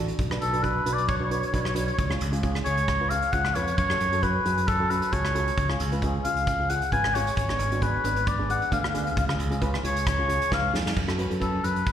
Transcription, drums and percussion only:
0.08 closed hi-hat
0.19 kick, closed hi-hat
0.31 cross-stick
0.42 closed hi-hat
0.53 closed hi-hat
0.64 kick, closed hi-hat
0.86 closed hi-hat
0.98 closed hi-hat
1.08 kick, closed hi-hat
1.31 closed hi-hat
1.43 closed hi-hat
1.54 kick, closed hi-hat
1.65 cross-stick
1.76 closed hi-hat
1.88 closed hi-hat
1.99 kick, closed hi-hat
2.11 cross-stick
2.21 closed hi-hat
2.33 closed hi-hat
2.43 kick, closed hi-hat
2.55 cross-stick
2.66 closed hi-hat
2.77 closed hi-hat
2.88 kick, cross-stick, closed hi-hat
3.10 closed hi-hat
3.22 closed hi-hat
3.32 kick, closed hi-hat
3.45 cross-stick
3.55 closed hi-hat
3.68 closed hi-hat
3.78 kick, closed hi-hat
3.90 cross-stick
4.00 closed hi-hat
4.13 closed hi-hat
4.23 kick, closed hi-hat
4.46 closed hi-hat
4.58 closed hi-hat
4.68 kick, closed hi-hat
4.90 closed hi-hat
5.02 closed hi-hat
5.13 kick, closed hi-hat
5.25 cross-stick
5.35 closed hi-hat
5.48 closed hi-hat
5.58 kick, closed hi-hat
5.70 cross-stick
5.80 closed hi-hat
5.92 closed hi-hat
6.02 kick, closed hi-hat
6.25 closed hi-hat
6.37 closed hi-hat
6.47 kick, closed hi-hat
6.70 closed hi-hat
6.82 closed hi-hat
6.92 kick, closed hi-hat
7.04 cross-stick
7.15 closed hi-hat
7.27 closed hi-hat
7.37 kick, closed hi-hat
7.49 cross-stick
7.60 closed hi-hat
7.72 closed hi-hat
7.82 kick, closed hi-hat
8.05 closed hi-hat
8.16 closed hi-hat
8.27 kick, closed hi-hat
8.50 closed hi-hat
8.62 closed hi-hat
8.72 kick, closed hi-hat
8.84 cross-stick
8.95 closed hi-hat
9.07 closed hi-hat
9.17 kick, closed hi-hat
9.29 cross-stick
9.40 closed hi-hat
9.52 closed hi-hat
9.62 kick, closed hi-hat
9.74 cross-stick
9.85 closed hi-hat
9.96 closed hi-hat
10.07 kick, cross-stick, closed hi-hat
10.29 closed hi-hat
10.42 closed hi-hat
10.52 kick, snare
10.75 snare
10.86 snare
10.97 kick, crash
11.09 cross-stick
11.19 closed hi-hat
11.31 closed hi-hat
11.41 kick, closed hi-hat
11.64 closed hi-hat
11.76 closed hi-hat
11.86 kick, closed hi-hat

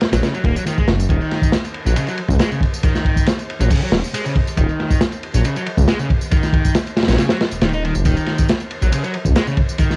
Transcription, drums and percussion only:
0.01 snare, ride
0.13 snare, ride, tambourine
0.23 snare, ride, tambourine
0.34 ride, tambourine
0.44 kick, ride
0.56 ride, tambourine
0.66 snare, ride, tambourine
0.78 kick, tambourine
0.88 snare, ride
1.00 ride, tambourine
1.09 kick, ride, tambourine
1.21 ride, tambourine
1.31 snare, ride
1.42 kick, tambourine
1.52 snare, ride, tambourine
1.65 ride, tambourine
1.74 ride
1.86 tambourine
1.96 ride, tambourine
2.07 ride, tambourine
2.18 ride
2.29 kick, tambourine
2.39 snare, ride, tambourine
2.52 tambourine
2.60 kick, ride
2.74 tambourine
2.83 kick, ride, tambourine
2.95 snare, tambourine
3.05 kick, ride
3.16 kick, tambourine
3.26 snare, ride, tambourine
3.39 ride, tambourine
3.50 ride
3.60 ride, tambourine
3.70 kick, open hi-hat, tambourine
3.82 ride, tambourine
3.92 snare, ride
4.04 tambourine
4.14 ride, tambourine
4.26 tambourine
4.36 kick, ride
4.47 ride, tambourine
4.57 kick, ride, tambourine
4.69 ride, tambourine
4.80 snare, ride
4.90 kick, tambourine
5.01 snare, ride, tambourine
5.12 ride, tambourine
5.23 ride
5.34 tambourine
5.44 ride, tambourine
5.56 ride, tambourine
5.66 ride
5.77 kick, tambourine
5.88 snare, ride, tambourine
5.99 tambourine
6.10 kick, ride
6.21 tambourine
6.31 kick, ride, tambourine
6.43 snare, tambourine
6.53 kick, ride
6.65 kick, tambourine
6.75 snare, ride, tambourine
6.87 ride, tambourine
6.97 snare, ride
7.02 snare, ride
7.08 snare, ride, tambourine
7.12 snare, ride
7.18 snare, ride, tambourine
7.29 snare, ride, tambourine
7.41 snare, ride
7.51 ride, tambourine
7.61 snare, ride, tambourine
7.73 ride, tambourine
7.85 ride
7.95 tambourine
8.05 kick, ride, tambourine
8.17 ride, tambourine
8.26 snare, ride
8.38 kick, tambourine
8.48 snare, ride, tambourine
8.60 ride, tambourine
8.71 ride
8.82 tambourine
8.92 ride, tambourine
9.04 ride, tambourine
9.14 ride
9.25 kick, tambourine
9.36 snare, ride, tambourine
9.47 tambourine
9.57 kick, ride
9.69 tambourine
9.78 kick, ride, tambourine
9.91 snare, tambourine

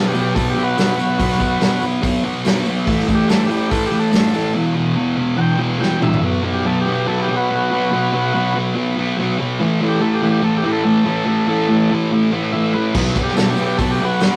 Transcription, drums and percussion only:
0.15 tambourine
0.36 kick, open hi-hat, tambourine
0.78 snare, open hi-hat, tambourine
0.99 tambourine
1.19 kick, open hi-hat
1.31 snare
1.40 kick, tambourine
1.61 snare, open hi-hat, tambourine
1.82 tambourine
2.03 kick, open hi-hat, tambourine
2.45 snare, open hi-hat, tambourine
2.66 tambourine
2.87 kick, open hi-hat
2.99 snare
3.09 kick, tambourine
3.29 snare, open hi-hat, tambourine
3.51 tambourine
3.71 kick, open hi-hat, tambourine
4.13 snare, open hi-hat, tambourine
4.34 tambourine
5.82 snare
6.02 mid tom
6.13 floor tom
12.95 kick, crash
13.06 snare
13.15 kick, tambourine
13.28 snare
13.37 snare, open hi-hat, tambourine
13.57 tambourine
13.79 kick, open hi-hat, tambourine
14.20 snare, open hi-hat, tambourine

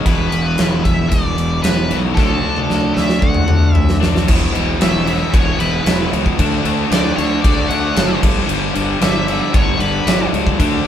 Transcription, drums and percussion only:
0.06 kick, ride
0.32 ride
0.58 snare, ride
0.85 kick, ride
1.12 kick, ride
1.38 ride
1.64 snare, ride
1.91 ride
2.17 kick, snare
2.30 high tom
2.56 high tom
2.70 snare
2.97 snare
3.09 snare
3.22 kick
3.34 mid tom
3.48 mid tom
3.75 floor tom
3.89 snare
4.03 snare
4.16 snare
4.28 kick, crash
4.55 crash
4.81 snare, crash
5.07 crash
5.34 kick, crash
5.60 crash
5.86 snare, crash
6.13 crash
6.26 kick
6.39 kick, crash
6.65 crash
6.92 snare, crash
7.18 crash
7.44 kick, crash
7.70 crash
7.96 snare, crash
8.23 kick, crash
8.49 crash
8.75 crash
9.01 snare, crash
9.28 crash
9.54 kick, crash
9.80 crash
10.07 snare, crash
10.34 crash
10.47 kick
10.60 kick, crash

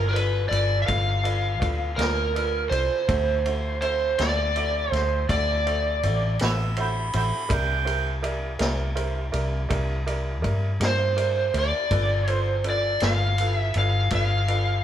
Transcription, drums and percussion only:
0.16 ride
0.52 ride
0.88 kick, ride
1.25 ride
1.62 kick, ride
1.99 snare, ride
2.36 ride
2.72 ride
3.09 kick, ride
3.46 ride
3.82 ride
4.19 snare, ride
4.56 ride
4.93 snare, ride
5.29 kick, ride
5.67 ride
6.03 ride
6.39 snare, ride
6.77 ride
7.13 ride
7.50 kick, ride
7.87 ride
8.24 ride
8.59 snare, ride
8.97 ride
9.34 ride
9.70 kick, ride
10.07 ride
10.44 kick, ride
10.81 snare, ride
11.18 ride
11.54 ride
11.91 kick, ride
12.27 ride
12.64 ride
13.00 snare, ride
13.38 ride
13.74 ride
14.11 kick, ride
14.48 ride

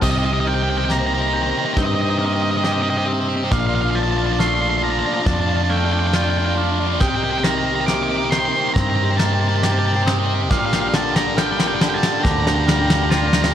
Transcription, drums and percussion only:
0.02 kick, snare, crash
0.90 snare
1.77 kick, snare
2.64 snare
3.51 kick, snare
4.40 snare
5.26 kick, snare
6.13 snare
7.00 kick, snare
7.44 snare
7.88 snare
8.32 snare
8.76 kick, snare
9.19 snare
9.63 snare
10.07 snare
10.51 kick, snare
10.73 snare
10.94 snare
11.16 snare
11.38 snare
11.60 snare
11.81 snare
12.03 snare
12.25 kick, snare
12.47 snare
12.68 snare
12.90 snare
13.12 snare
13.33 snare
13.44 snare

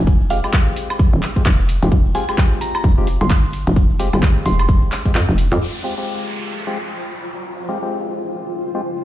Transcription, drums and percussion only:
0.07 kick, closed hi-hat, shaker
0.21 shaker
0.30 open hi-hat, shaker
0.44 closed hi-hat, high woodblock, shaker
0.53 kick, clap, closed hi-hat, shaker
0.68 shaker
0.76 open hi-hat, shaker
0.90 closed hi-hat, high woodblock, shaker
0.99 kick, closed hi-hat, shaker
1.13 shaker
1.22 clap, open hi-hat, shaker
1.36 kick, closed hi-hat, shaker
1.46 kick, clap, closed hi-hat, shaker
1.59 shaker
1.68 open hi-hat, shaker
1.82 closed hi-hat, shaker
1.92 kick, closed hi-hat, shaker
2.06 shaker
2.15 open hi-hat, shaker
2.28 closed hi-hat, high woodblock, shaker
2.38 kick, clap, closed hi-hat, shaker
2.52 shaker
2.61 open hi-hat, shaker
2.75 closed hi-hat, high woodblock, shaker
2.84 kick, closed hi-hat, shaker
2.99 shaker
3.07 open hi-hat, shaker
3.21 closed hi-hat, shaker
3.30 kick, clap, open hi-hat, shaker
3.44 shaker
3.53 open hi-hat, shaker
3.67 closed hi-hat, shaker
3.76 kick, closed hi-hat, shaker
3.91 shaker
3.99 open hi-hat, shaker
4.12 closed hi-hat, high woodblock, shaker
4.22 kick, clap, closed hi-hat, shaker
4.36 shaker
4.46 open hi-hat, shaker
4.59 closed hi-hat, high woodblock, shaker
4.69 kick, closed hi-hat, shaker
4.82 shaker
4.92 clap, open hi-hat, shaker
5.05 kick, closed hi-hat, shaker
5.14 clap, open hi-hat, shaker
5.29 shaker
5.38 open hi-hat, shaker
5.52 closed hi-hat, shaker

